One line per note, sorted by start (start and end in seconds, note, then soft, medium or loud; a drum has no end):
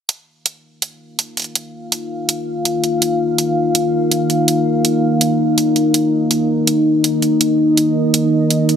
0.08 8.76 D#4 medium
0.08 8.76 A#4 medium
0.08 5.92 F5 medium
0.08 closed hi-hat medium
0.46 closed hi-hat medium
0.82 closed hi-hat medium
1.19 closed hi-hat medium
1.37 closed hi-hat soft
1.40 closed hi-hat soft
1.42 closed hi-hat soft
1.44 closed hi-hat soft
1.55 closed hi-hat medium
1.92 closed hi-hat medium
2.29 closed hi-hat medium
2.65 closed hi-hat medium
2.84 closed hi-hat soft
3.02 closed hi-hat medium
3.38 closed hi-hat medium
3.75 closed hi-hat medium
4.12 closed hi-hat medium
4.30 closed hi-hat soft
4.48 closed hi-hat medium
4.85 closed hi-hat medium
5.21 closed hi-hat medium
5.58 closed hi-hat medium
5.76 closed hi-hat soft
5.94 8.76 D#5 medium
5.94 closed hi-hat medium
6.31 closed hi-hat medium
6.67 closed hi-hat medium
7.04 closed hi-hat medium
7.22 closed hi-hat soft
7.41 closed hi-hat medium
7.77 closed hi-hat medium
8.14 closed hi-hat medium
8.51 closed hi-hat medium
8.69 closed hi-hat soft